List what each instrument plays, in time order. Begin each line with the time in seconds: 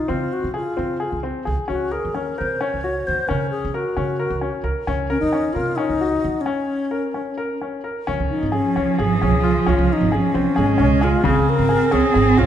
Already playing: alto flute D#4
0.08 upright bass C#3, grand piano C4, alto flute F4
0.33 alto flute F#4
0.44 upright bass C#3
0.54 alto flute F4, grand piano G#4
0.77 upright bass C#3, grand piano C4
1.00 grand piano G#4
1.12 upright bass C#2
1.23 grand piano C4
1.45 upright bass C#2, grand piano G#4
1.68 upright bass C#2, grand piano C#4, alto flute F#4
1.91 alto flute G#4, grand piano A#4
2.05 upright bass D#2
2.14 grand piano C#4, alto flute A#4
2.38 upright bass C3, grand piano A#4, alto flute C5
2.61 grand piano C#4, alto flute C#5
2.74 upright bass C#2
2.84 grand piano F#4
3.07 upright bass D#2, alto flute C5
3.28 upright bass C#3, grand piano C#4, alto flute A#4
3.51 alto flute G#4
3.65 upright bass C#3
3.74 alto flute F#4, grand piano A#4
3.97 upright bass C#3, grand piano C#4
4.19 grand piano A#4
4.30 upright bass C#2
4.41 grand piano C#4
4.63 upright bass C#2, grand piano A#4
4.87 upright bass C#2, grand piano C#4
5.10 alto flute C#4, grand piano A#4
5.20 upright bass D#2, alto flute D#4
5.33 grand piano C#4
5.53 upright bass C3, alto flute F4, grand piano A#4
5.76 grand piano C#4, alto flute D#4
5.89 upright bass C#2
6.01 grand piano F#4
6.24 upright bass D#2
6.41 alto flute C#4
6.46 grand piano C#4
6.91 grand piano A#4
7.14 grand piano C#4
7.38 grand piano A#4
7.61 grand piano C#4
7.84 grand piano A#4
8.07 upright bass C#2, cello F3, grand piano C#4
8.20 upright bass C#2
8.30 alto flute D#4
8.43 upright bass G#1
8.52 alto flute C#4, grand piano G#4
8.76 upright bass C#2, grand piano C#4
8.98 upright bass G#1, grand piano G#4, alto flute G#4
9.22 upright bass C#2, grand piano C#4
9.43 grand piano F4
9.66 upright bass C#2, grand piano C#4, alto flute F4
9.79 upright bass C#2
9.93 alto flute D#4
10.01 upright bass G#1
10.12 alto flute C#4, grand piano G#4
10.34 upright bass C#2, grand piano C4
10.56 upright bass G#1, cello G#3, grand piano G#4
10.78 upright bass C#2, grand piano C#4
11.01 alto flute F4, grand piano G#4
11.23 upright bass C#2, grand piano C#3, cello C4, alto flute G#4
11.36 upright bass C#2
11.49 alto flute A#4
11.59 upright bass G#1
11.69 grand piano G#4
11.91 upright bass C#2, grand piano C#4, alto flute G#4
12.14 upright bass G#1, grand piano G#4
12.37 upright bass C#2, grand piano C#4, alto flute F4